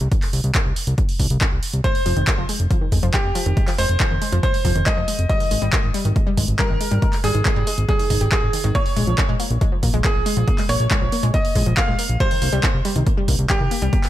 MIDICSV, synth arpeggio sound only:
0, 0, Header, 1, 2, 480
1, 0, Start_track
1, 0, Key_signature, -4, "minor"
1, 0, Tempo, 431655
1, 129, Time_signature, 4, 2, 24, 8
1, 15671, End_track
2, 0, Start_track
2, 0, Title_t, "Synth arpeggio sound"
2, 0, Program_c, 0, 84
2, 2048, Note_on_c, 0, 56, 79
2, 2091, Note_off_c, 0, 56, 0
2, 2288, Note_on_c, 0, 53, 98
2, 2352, Note_off_c, 0, 53, 0
2, 2408, Note_on_c, 0, 51, 76
2, 2451, Note_off_c, 0, 51, 0
2, 2529, Note_on_c, 0, 56, 83
2, 2571, Note_off_c, 0, 56, 0
2, 2648, Note_on_c, 0, 53, 105
2, 2674, Note_off_c, 0, 53, 0
2, 2769, Note_on_c, 0, 56, 73
2, 2811, Note_off_c, 0, 56, 0
2, 3008, Note_on_c, 0, 53, 94
2, 3072, Note_off_c, 0, 53, 0
2, 3128, Note_on_c, 0, 51, 77
2, 3171, Note_off_c, 0, 51, 0
2, 3249, Note_on_c, 0, 56, 69
2, 3291, Note_off_c, 0, 56, 0
2, 3368, Note_on_c, 0, 53, 99
2, 3394, Note_off_c, 0, 53, 0
2, 3489, Note_on_c, 0, 56, 78
2, 3531, Note_off_c, 0, 56, 0
2, 3728, Note_on_c, 0, 53, 97
2, 3792, Note_off_c, 0, 53, 0
2, 3849, Note_on_c, 0, 51, 74
2, 3891, Note_off_c, 0, 51, 0
2, 3968, Note_on_c, 0, 56, 78
2, 4011, Note_off_c, 0, 56, 0
2, 4088, Note_on_c, 0, 53, 98
2, 4114, Note_off_c, 0, 53, 0
2, 4208, Note_on_c, 0, 56, 80
2, 4251, Note_off_c, 0, 56, 0
2, 4448, Note_on_c, 0, 53, 96
2, 4512, Note_off_c, 0, 53, 0
2, 4568, Note_on_c, 0, 51, 82
2, 4611, Note_off_c, 0, 51, 0
2, 4688, Note_on_c, 0, 56, 75
2, 4731, Note_off_c, 0, 56, 0
2, 4808, Note_on_c, 0, 53, 104
2, 4834, Note_off_c, 0, 53, 0
2, 4928, Note_on_c, 0, 56, 82
2, 4971, Note_off_c, 0, 56, 0
2, 5168, Note_on_c, 0, 53, 97
2, 5231, Note_off_c, 0, 53, 0
2, 5288, Note_on_c, 0, 51, 69
2, 5331, Note_off_c, 0, 51, 0
2, 5408, Note_on_c, 0, 56, 81
2, 5450, Note_off_c, 0, 56, 0
2, 5528, Note_on_c, 0, 53, 97
2, 5554, Note_off_c, 0, 53, 0
2, 5648, Note_on_c, 0, 56, 71
2, 5691, Note_off_c, 0, 56, 0
2, 5888, Note_on_c, 0, 55, 103
2, 5952, Note_off_c, 0, 55, 0
2, 6008, Note_on_c, 0, 51, 72
2, 6051, Note_off_c, 0, 51, 0
2, 6128, Note_on_c, 0, 56, 78
2, 6171, Note_off_c, 0, 56, 0
2, 6248, Note_on_c, 0, 55, 96
2, 6274, Note_off_c, 0, 55, 0
2, 6368, Note_on_c, 0, 56, 81
2, 6411, Note_off_c, 0, 56, 0
2, 6608, Note_on_c, 0, 55, 104
2, 6672, Note_off_c, 0, 55, 0
2, 6728, Note_on_c, 0, 51, 75
2, 6771, Note_off_c, 0, 51, 0
2, 6848, Note_on_c, 0, 56, 76
2, 6891, Note_off_c, 0, 56, 0
2, 6968, Note_on_c, 0, 55, 107
2, 6994, Note_off_c, 0, 55, 0
2, 7088, Note_on_c, 0, 56, 72
2, 7131, Note_off_c, 0, 56, 0
2, 7329, Note_on_c, 0, 55, 90
2, 7392, Note_off_c, 0, 55, 0
2, 7449, Note_on_c, 0, 51, 77
2, 7491, Note_off_c, 0, 51, 0
2, 7569, Note_on_c, 0, 56, 71
2, 7611, Note_off_c, 0, 56, 0
2, 7688, Note_on_c, 0, 55, 96
2, 7714, Note_off_c, 0, 55, 0
2, 7809, Note_on_c, 0, 56, 80
2, 7851, Note_off_c, 0, 56, 0
2, 8049, Note_on_c, 0, 55, 100
2, 8112, Note_off_c, 0, 55, 0
2, 8169, Note_on_c, 0, 51, 75
2, 8211, Note_off_c, 0, 51, 0
2, 8290, Note_on_c, 0, 56, 81
2, 8331, Note_off_c, 0, 56, 0
2, 8409, Note_on_c, 0, 55, 109
2, 8435, Note_off_c, 0, 55, 0
2, 8529, Note_on_c, 0, 56, 77
2, 8571, Note_off_c, 0, 56, 0
2, 8770, Note_on_c, 0, 55, 97
2, 8832, Note_off_c, 0, 55, 0
2, 8889, Note_on_c, 0, 51, 75
2, 8931, Note_off_c, 0, 51, 0
2, 9010, Note_on_c, 0, 63, 73
2, 9035, Note_off_c, 0, 63, 0
2, 9129, Note_on_c, 0, 67, 75
2, 9192, Note_off_c, 0, 67, 0
2, 9250, Note_on_c, 0, 55, 76
2, 9292, Note_off_c, 0, 55, 0
2, 9489, Note_on_c, 0, 51, 69
2, 9531, Note_off_c, 0, 51, 0
2, 9609, Note_on_c, 0, 51, 98
2, 9651, Note_off_c, 0, 51, 0
2, 9729, Note_on_c, 0, 58, 80
2, 9771, Note_off_c, 0, 58, 0
2, 9969, Note_on_c, 0, 56, 102
2, 10032, Note_off_c, 0, 56, 0
2, 10089, Note_on_c, 0, 53, 76
2, 10131, Note_off_c, 0, 53, 0
2, 10209, Note_on_c, 0, 58, 78
2, 10251, Note_off_c, 0, 58, 0
2, 10328, Note_on_c, 0, 56, 111
2, 10354, Note_off_c, 0, 56, 0
2, 10449, Note_on_c, 0, 58, 77
2, 10491, Note_off_c, 0, 58, 0
2, 10689, Note_on_c, 0, 56, 97
2, 10752, Note_off_c, 0, 56, 0
2, 10809, Note_on_c, 0, 53, 76
2, 10851, Note_off_c, 0, 53, 0
2, 10929, Note_on_c, 0, 58, 72
2, 10971, Note_off_c, 0, 58, 0
2, 11049, Note_on_c, 0, 56, 95
2, 11075, Note_off_c, 0, 56, 0
2, 11169, Note_on_c, 0, 58, 77
2, 11211, Note_off_c, 0, 58, 0
2, 11409, Note_on_c, 0, 56, 94
2, 11472, Note_off_c, 0, 56, 0
2, 11530, Note_on_c, 0, 53, 72
2, 11571, Note_off_c, 0, 53, 0
2, 11650, Note_on_c, 0, 58, 82
2, 11691, Note_off_c, 0, 58, 0
2, 11770, Note_on_c, 0, 56, 99
2, 11795, Note_off_c, 0, 56, 0
2, 11889, Note_on_c, 0, 58, 78
2, 11931, Note_off_c, 0, 58, 0
2, 12130, Note_on_c, 0, 56, 98
2, 12193, Note_off_c, 0, 56, 0
2, 12249, Note_on_c, 0, 53, 81
2, 12291, Note_off_c, 0, 53, 0
2, 12370, Note_on_c, 0, 58, 81
2, 12411, Note_off_c, 0, 58, 0
2, 12490, Note_on_c, 0, 56, 99
2, 12515, Note_off_c, 0, 56, 0
2, 12610, Note_on_c, 0, 58, 80
2, 12651, Note_off_c, 0, 58, 0
2, 12850, Note_on_c, 0, 56, 98
2, 12912, Note_off_c, 0, 56, 0
2, 12970, Note_on_c, 0, 53, 76
2, 13012, Note_off_c, 0, 53, 0
2, 13210, Note_on_c, 0, 56, 99
2, 13235, Note_off_c, 0, 56, 0
2, 13330, Note_on_c, 0, 58, 73
2, 13372, Note_off_c, 0, 58, 0
2, 13570, Note_on_c, 0, 55, 99
2, 13632, Note_off_c, 0, 55, 0
2, 13689, Note_on_c, 0, 51, 80
2, 13731, Note_off_c, 0, 51, 0
2, 13809, Note_on_c, 0, 58, 76
2, 13851, Note_off_c, 0, 58, 0
2, 13929, Note_on_c, 0, 55, 104
2, 13954, Note_off_c, 0, 55, 0
2, 14049, Note_on_c, 0, 58, 78
2, 14091, Note_off_c, 0, 58, 0
2, 14289, Note_on_c, 0, 55, 101
2, 14352, Note_off_c, 0, 55, 0
2, 14409, Note_on_c, 0, 51, 78
2, 14451, Note_off_c, 0, 51, 0
2, 14528, Note_on_c, 0, 58, 78
2, 14571, Note_off_c, 0, 58, 0
2, 14649, Note_on_c, 0, 55, 109
2, 14674, Note_off_c, 0, 55, 0
2, 14769, Note_on_c, 0, 58, 72
2, 14811, Note_off_c, 0, 58, 0
2, 15009, Note_on_c, 0, 55, 94
2, 15072, Note_off_c, 0, 55, 0
2, 15129, Note_on_c, 0, 51, 74
2, 15171, Note_off_c, 0, 51, 0
2, 15249, Note_on_c, 0, 58, 77
2, 15291, Note_off_c, 0, 58, 0
2, 15369, Note_on_c, 0, 55, 99
2, 15394, Note_off_c, 0, 55, 0
2, 15489, Note_on_c, 0, 58, 82
2, 15531, Note_off_c, 0, 58, 0
2, 15671, End_track
0, 0, End_of_file